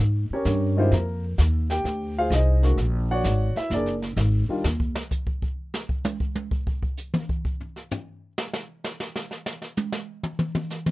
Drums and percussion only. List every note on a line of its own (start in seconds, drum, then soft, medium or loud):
0.45 snare medium
0.45 hi-hat pedal medium
0.92 brush sweep soft
0.92 snare soft
1.38 snare medium
1.38 hi-hat pedal soft
1.70 snare medium
1.85 brush sweep soft
1.85 snare soft
2.31 snare medium
2.31 hi-hat pedal medium
2.63 snare soft
2.78 brush sweep soft
2.78 snare soft
3.24 snare medium
3.24 hi-hat pedal medium
3.56 snare soft
3.71 brush sweep soft
3.71 snare soft
3.86 snare soft
4.02 snare soft
4.17 snare medium
4.17 hi-hat pedal medium
4.64 snare loud
4.80 kick medium
4.95 snare loud
5.11 kick medium
5.11 hi-hat pedal medium
5.27 kick medium
5.42 kick medium
5.74 snare medium
5.89 kick medium
6.04 hi-hat pedal medium
6.04 high tom loud
6.20 kick medium
6.35 high tom medium
6.51 kick medium
6.67 kick medium
6.83 kick medium
6.98 hi-hat pedal medium
7.14 mid tom medium
7.29 kick medium
7.45 kick medium
7.61 floor tom soft
7.76 snare soft
7.91 floor tom loud
7.91 hi-hat pedal medium
8.38 snare loud
8.53 snare loud
8.84 snare medium
8.84 hi-hat pedal medium
9.00 snare loud
9.16 snare medium
9.31 snare soft
9.46 snare medium
9.62 snare soft
9.77 hi-hat pedal medium
9.77 high tom loud
9.92 snare loud
10.23 mid tom loud
10.39 mid tom loud
10.55 mid tom loud
10.70 snare soft
10.70 hi-hat pedal medium
10.86 mid tom loud